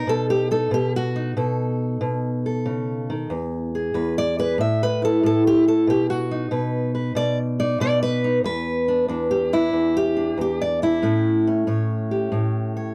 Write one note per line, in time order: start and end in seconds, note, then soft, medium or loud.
0.00 0.50 D#4 medium
0.07 0.69 B2 medium
0.07 0.30 A4 loud
0.30 0.51 G4 medium
0.51 0.70 D#4 soft
0.51 0.73 A4 loud
0.71 1.36 B2 medium
0.71 0.95 G4 medium
0.96 1.31 F#4 loud
1.16 3.28 D#4 medium
1.37 2.00 B2 medium
1.37 2.45 A4 medium
2.01 3.27 B2 medium
2.46 3.28 A4 soft
2.66 3.09 C#3 medium
3.10 3.31 D#3 medium
3.30 3.93 E2 medium
3.75 4.37 G#4 soft
3.94 4.59 E2 medium
3.94 4.16 B4 medium
4.18 4.39 D5 loud
4.39 4.57 G#4 medium
4.39 4.60 B4 loud
4.58 5.22 A2 medium
4.58 4.81 E5 medium
4.83 5.03 B4 loud
5.02 5.66 E4 soft
5.02 5.25 A4 loud
5.23 5.88 A2 medium
5.23 5.46 A4 loud
5.47 5.67 G4 loud
5.68 5.86 E4 soft
5.68 5.89 A4 loud
5.87 6.50 B2 medium
5.87 6.09 G4 loud
6.10 6.45 F#4 loud
6.31 7.58 D#4 medium
6.51 7.14 B2 medium
6.51 6.93 B4 medium
6.95 7.16 B4 medium
7.15 7.79 B2 medium
7.15 7.38 D5 loud
7.60 8.23 D#4 medium
7.60 7.80 D5 loud
7.80 8.42 B2 medium
7.80 8.02 D5 loud
8.03 8.38 B4 loud
8.24 8.42 D#4 medium
8.44 9.07 E2 medium
8.44 9.31 B4 loud
8.88 9.08 D4 soft
9.08 9.72 E2 medium
9.08 9.52 D4 soft
9.31 9.52 G4 medium
9.53 10.15 D4 soft
9.53 9.95 E4 loud
9.73 10.36 E2 medium
9.97 10.39 G4 loud
10.17 10.81 D4 soft
10.37 11.02 E2 medium
10.37 10.61 G4 medium
10.61 10.82 D5 medium
10.82 11.00 D4 soft
10.82 11.46 E4 loud
11.02 11.66 A2 medium
11.02 12.94 A3 medium
11.02 11.46 C#4 soft
11.47 12.94 C#4 soft
11.67 12.30 A2 medium
11.67 12.75 C#5 soft
12.11 12.94 G4 soft
12.32 12.94 A2 medium
12.77 12.94 C#5 soft